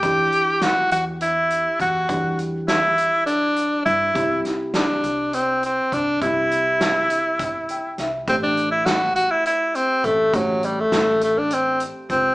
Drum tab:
HH |xxxxxxx|xxxxxxx|xxxxxxx|xxxxxxx|
SD |--o----|--o----|-oo----|--o---o|
BD |o-----o|o-----o|o-----o|o---o--|

HH |xxxxxxx|xxxxxxx|
SD |--o----|--o----|
BD |o-----o|o-----o|